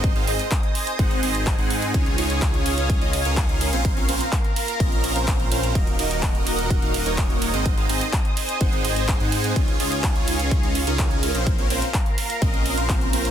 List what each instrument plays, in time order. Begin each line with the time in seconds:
Already playing: detuned saw bass G#1, supersaw synth C4 D#4 G#4 C5 D#5
0.04 analog synth pad C5 D#5 G#5 D#6, kick, closed hi-hat
0.16 detuned saw bass G#1, supersaw synth C4 D#4 G#4 C5 F5, closed hi-hat
0.27 detuned saw bass G#1, supersaw synth C4 D#4 G#4 C5 D#5, open hi-hat
0.39 closed hi-hat
0.51 kick, clap, closed hi-hat
0.63 closed hi-hat
0.75 open hi-hat
0.87 closed hi-hat
0.99 detuned saw bass G#1, supersaw synth C4 D#4 G#4 C5 F#5, kick, closed hi-hat
1.11 closed hi-hat
1.23 detuned saw bass G#1, supersaw synth C4 D#4 G#4 C5 D#5, open hi-hat
1.35 closed hi-hat
1.47 kick, clap, closed hi-hat
1.59 detuned saw bass G#2, supersaw synth C4 D#4 G#4 C5 F#5, closed hi-hat
1.70 open hi-hat
1.82 closed hi-hat
1.94 detuned saw bass C#2, supersaw synth C#4 D#4 F4 G#4 C#5, analog synth pad C#5 F5 D#6, kick, closed hi-hat, ride
2.06 closed hi-hat
2.18 detuned saw bass C#2, supersaw synth C#4 D#4 F4 G#4 C#5, open hi-hat, ride
2.30 closed hi-hat
2.42 kick, clap, closed hi-hat, ride
2.54 closed hi-hat
2.66 open hi-hat, ride
2.78 closed hi-hat
2.90 kick, closed hi-hat, ride
3.01 detuned saw bass C#2, supersaw synth C#4 D#4 F4 G#4 D#5, closed hi-hat
3.13 open hi-hat, ride
3.25 detuned saw bass C#2, supersaw synth C#4 D#4 F4 G#4 A#4, closed hi-hat
3.37 kick, clap, closed hi-hat, ride
3.49 closed hi-hat
3.61 open hi-hat, ride
3.73 detuned saw bass A#1, supersaw synth C4 C#4 F4 A#4 C5, closed hi-hat
3.85 analog synth pad A#4 A#5, kick, closed hi-hat, ride
3.97 detuned saw bass A#1, supersaw synth C4 C#4 F4 A#4 C#5, closed hi-hat
4.09 detuned saw bass A#1, supersaw synth C4 C#4 F4 A#4 C5, open hi-hat, ride
4.21 closed hi-hat
4.32 kick, clap, closed hi-hat, ride
4.44 closed hi-hat
4.56 open hi-hat, ride
4.68 closed hi-hat
4.80 detuned saw bass A#1, supersaw synth C4 C#4 F4 A#4 D#5, kick, closed hi-hat, ride
4.92 closed hi-hat
5.04 open hi-hat, ride
5.16 detuned saw bass A#1, supersaw synth C4 C#4 F4 A#4 C5, closed hi-hat
5.28 kick, clap, closed hi-hat, ride
5.40 closed hi-hat
5.51 detuned saw bass A#1, supersaw synth C4 C#4 F4 A#4 C5, open hi-hat, ride
5.63 closed hi-hat
5.75 detuned saw bass D#1, supersaw synth A#3 D#4 F#4 A#4 D#5, analog synth pad A#4 D#5 F#5 D#6, kick, closed hi-hat, ride
5.87 closed hi-hat
5.99 detuned saw bass D#1, supersaw synth A#3 D#4 F#4 A#4 D#5, open hi-hat, ride
6.11 closed hi-hat
6.23 kick, clap, closed hi-hat, ride
6.35 closed hi-hat
6.47 open hi-hat, ride
6.59 closed hi-hat
6.70 kick, closed hi-hat, ride
6.82 detuned saw bass D#1, supersaw synth A#3 D#4 F#4 A#4 F5, closed hi-hat
6.94 open hi-hat, ride
7.06 detuned saw bass D#1, supersaw synth A#3 D#4 F#4 A#4 C#5, closed hi-hat
7.18 kick, clap, closed hi-hat, ride
7.30 closed hi-hat
7.42 open hi-hat, ride
7.54 detuned saw bass G#1, supersaw synth C4 D#4 G#4 C5 D#5, closed hi-hat
7.66 analog synth pad C5 G#5, kick, closed hi-hat, ride
7.77 detuned saw bass G#1, supersaw synth C4 D#4 G#4 C5 F5, closed hi-hat
7.89 detuned saw bass G#1, supersaw synth C4 D#4 G#4 C5 D#5, open hi-hat, ride
8.01 closed hi-hat
8.13 kick, clap, closed hi-hat, ride
8.25 closed hi-hat
8.37 open hi-hat, ride
8.49 closed hi-hat
8.61 detuned saw bass G#1, supersaw synth C4 D#4 G#4 C5 F#5, kick, closed hi-hat, ride
8.73 closed hi-hat
8.85 detuned saw bass G#1, supersaw synth C4 D#4 G#4 C5 D#5, open hi-hat, ride
8.96 closed hi-hat
9.08 kick, clap, closed hi-hat, ride
9.20 detuned saw bass G#2, supersaw synth C4 D#4 G#4 C5 F#5, closed hi-hat
9.32 open hi-hat, ride
9.44 closed hi-hat
9.56 detuned saw bass C#2, supersaw synth C#4 D#4 F4 G#4 C#5, analog synth pad C#5 F5, kick, closed hi-hat, ride
9.68 closed hi-hat
9.80 detuned saw bass C#2, supersaw synth C#4 D#4 F4 G#4 C#5, open hi-hat, ride
9.92 closed hi-hat
10.04 kick, clap, closed hi-hat, ride
10.16 closed hi-hat
10.28 open hi-hat, ride
10.40 closed hi-hat
10.51 kick, closed hi-hat, ride
10.63 detuned saw bass C#2, supersaw synth C#4 D#4 F4 G#4 D#5, closed hi-hat
10.75 open hi-hat, ride
10.87 detuned saw bass C#2, supersaw synth C#4 D#4 F4 G#4 A#4, closed hi-hat
10.99 kick, clap, closed hi-hat, ride
11.11 closed hi-hat
11.23 open hi-hat, ride
11.35 detuned saw bass A#1, supersaw synth C4 C#4 F4 A#4 C5, closed hi-hat
11.47 analog synth pad A#4 F5 A#5, kick, closed hi-hat, ride
11.58 detuned saw bass A#1, supersaw synth C4 C#4 F4 A#4 C#5, closed hi-hat
11.70 detuned saw bass A#1, supersaw synth C4 C#4 F4 A#4 C5, open hi-hat, ride
11.82 closed hi-hat
11.94 kick, clap, closed hi-hat, ride
12.06 closed hi-hat
12.18 open hi-hat, ride
12.30 closed hi-hat
12.42 detuned saw bass A#1, supersaw synth C4 C#4 F4 A#4 D#5, kick, closed hi-hat, ride
12.54 closed hi-hat
12.66 open hi-hat, ride
12.78 detuned saw bass A#1, supersaw synth C4 C#4 F4 A#4 C5, closed hi-hat
12.89 kick, clap, closed hi-hat, ride
13.01 closed hi-hat
13.13 detuned saw bass A#1, supersaw synth C4 C#4 F4 A#4 C5, open hi-hat, ride
13.25 closed hi-hat